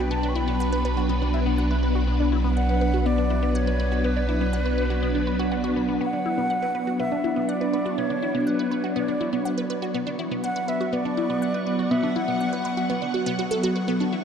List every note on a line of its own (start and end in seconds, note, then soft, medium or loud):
0.00 5.99 B1 medium
0.00 6.01 F#3 medium
0.00 6.00 B3 medium
0.00 6.01 D4 medium
0.00 6.01 B4 medium
0.00 0.13 G5 medium
0.11 0.18 B3 medium
0.11 0.30 A5 medium
0.23 0.31 D4 medium
0.29 0.37 C#6 medium
0.35 0.46 E4 medium
0.35 1.34 B5 loud
0.48 0.52 B3 medium
0.60 0.71 F#5 loud
0.72 0.77 B4 medium
0.85 0.92 B4 medium
0.97 1.08 F#4 medium
1.09 1.17 B3 medium
1.22 1.29 D4 medium
1.34 1.45 E4 medium
1.46 1.51 B3 medium
1.58 1.69 F#5 loud
1.71 1.75 B4 medium
1.83 1.90 B4 medium
1.95 2.06 F#4 medium
2.07 2.15 B3 medium
2.20 2.27 D4 medium
2.32 2.43 E4 medium
2.44 2.49 B3 medium
2.57 2.68 F#5 medium
2.57 3.08 F#5 loud
2.69 2.74 B4 medium
2.81 2.89 B4 medium
2.94 3.05 F#4 medium
3.06 3.13 B3 medium
3.06 3.57 D5 loud
3.18 3.26 D4 medium
3.30 3.41 E4 medium
3.43 3.47 B3 medium
3.55 4.06 C#5 medium
3.55 3.66 F#5 loud
3.67 3.72 B4 medium
3.80 3.87 B4 medium
3.92 4.03 F#4 medium
4.04 4.12 B3 medium
4.04 5.52 B4 medium
4.16 4.24 D4 medium
4.29 4.40 E4 medium
4.41 4.46 B3 medium
4.53 4.64 F#5 loud
4.66 4.70 B4 medium
4.78 4.85 B4 medium
4.90 5.01 F#4 medium
5.03 5.10 B3 medium
5.15 5.22 D4 medium
5.27 5.35 B4 medium
5.39 5.50 F#4 loud
5.52 5.56 F#4 medium
5.64 5.71 F#4 loud
5.76 5.87 B3 medium
5.89 5.93 B3 medium
6.01 6.08 B3 medium
6.01 14.24 B3 medium
6.01 7.01 F#5 loud
6.13 14.24 F#3 medium
6.13 6.21 D4 medium
6.22 6.37 E4 medium
6.22 14.24 C#6 medium
6.38 6.42 B3 medium
6.50 6.61 F#5 medium
6.62 10.60 D4 medium
6.62 6.67 B4 medium
6.75 6.82 B4 medium
6.87 6.98 F#4 medium
6.99 7.07 B3 medium
6.99 7.50 E5 loud
7.12 7.19 D4 medium
7.24 7.35 E4 medium
7.36 7.41 B3 medium
7.49 7.99 D5 medium
7.49 7.60 F#5 loud
7.61 7.65 B4 medium
7.73 7.81 B4 medium
7.86 7.97 F#4 medium
7.98 8.05 B3 medium
7.98 8.40 C#5 loud
8.10 8.17 D4 medium
8.22 8.33 E4 medium
8.35 8.39 B3 medium
8.40 8.49 C#5 medium
8.47 8.96 B4 medium
8.47 8.58 F#5 loud
8.59 8.64 B4 medium
8.71 8.79 B4 medium
8.84 8.95 F#4 medium
8.96 9.03 B3 medium
8.96 9.66 D5 medium
9.08 9.16 D4 medium
9.21 9.32 E4 medium
9.33 9.37 B3 medium
9.45 9.56 F#5 loud
9.58 9.62 B4 medium
9.70 9.77 B4 medium
9.82 9.93 F#4 medium
9.94 10.02 B3 medium
10.07 10.14 D4 medium
10.19 10.30 E4 medium
10.31 10.36 B3 medium
10.44 10.55 F#5 medium
10.44 10.70 F#5 loud
10.56 10.60 B4 medium
10.56 14.24 F#5 medium
10.68 10.76 B4 medium
10.68 10.95 E5 loud
10.81 10.92 F#4 medium
10.93 11.00 B3 medium
10.93 11.92 D5 loud
11.05 11.13 D4 medium
11.17 11.28 E4 medium
11.30 11.34 B3 medium
11.42 11.53 F#5 loud
11.54 11.59 B4 medium
11.67 11.74 B4 medium
11.79 11.90 F#4 medium
11.91 11.99 B3 medium
11.91 12.18 E5 loud
12.03 12.11 D4 medium
12.16 12.27 E4 medium
12.16 13.14 F#5 loud
12.28 12.32 B3 medium
12.40 12.51 F#5 medium
12.53 12.57 B4 medium
12.65 12.72 B4 medium
12.77 12.88 F#4 medium
12.90 12.97 B3 medium
13.02 13.09 D4 medium
13.14 13.25 F#4 medium
13.26 13.34 B3 loud
13.39 13.46 F#4 medium
13.51 13.58 A4 loud
13.63 13.71 F#4 loud
13.76 13.80 B4 medium
13.88 13.95 B3 medium
14.00 14.08 D4 medium
14.13 14.24 E4 medium